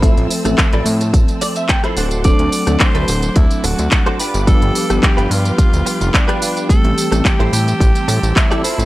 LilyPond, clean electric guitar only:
\new Staff \with { instrumentName = "Clean electric guitar" } { \time 4/4 \key a \minor \tempo 4 = 108 << { r2 r8 d''16 e''16 g''8 fis''8 | r1 | r1 | r1 | } \\ { <e' f' a' c''>8 r8. <e' f' a' d''>16 r4. r16 <e' f' a' c''>16 <d' fis' a' c''>8~ | <d' fis' a' c''>8 r8. <d' fis' a' b'>16 r4. r16 <d' fis' a' c''>16 <d' f' g' b'>8~ | <d' f' g' b'>8 r8. <d' f' g' b'>16 r4. r16 <d' f' g' b'>8. | r4 r16 <e' g' a' c''>16 r4. r16 <e' g' a' d''>16 <e' f' a' c''>8 | } >> }